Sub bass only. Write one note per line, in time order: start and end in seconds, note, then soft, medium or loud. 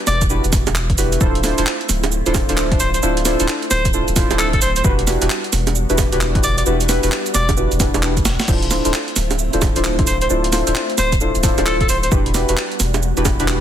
0.07 0.39 E1 loud
0.44 0.61 E1 medium
0.67 0.95 E1 loud
0.98 1.17 E1 medium
1.21 1.53 D1 loud
1.58 1.64 D1 medium
1.89 2.21 D1 loud
2.26 2.43 D1 medium
2.49 2.77 D1 loud
2.80 2.99 D1 medium
3.03 3.35 D1 loud
3.40 3.46 D1 medium
3.71 4.03 D1 loud
4.08 4.25 D1 medium
4.31 4.59 D1 loud
4.62 4.81 D1 medium
4.84 5.17 E1 loud
5.21 5.28 E1 medium
5.52 5.85 E1 loud
5.90 6.06 E1 medium
6.12 6.41 E1 loud
6.43 6.63 E1 medium
6.66 6.99 E1 loud
7.03 7.10 E1 medium
7.34 7.67 E1 loud
7.72 7.88 E1 medium
7.94 8.23 E1 loud
8.25 8.37 E1 medium
8.48 8.80 D1 loud
8.85 8.92 D1 medium
9.16 9.49 D1 loud
9.53 9.70 D1 medium
9.76 10.04 D1 loud
10.07 10.26 D1 medium
10.30 10.62 D1 loud
10.67 10.74 D1 medium
10.98 11.30 D1 loud
11.35 11.52 D1 medium
11.58 11.86 D1 loud
11.89 12.08 D1 medium
12.12 12.44 E1 loud
12.49 12.55 E1 medium
12.80 13.12 E1 loud
13.17 13.34 E1 medium
13.40 13.61 E1 loud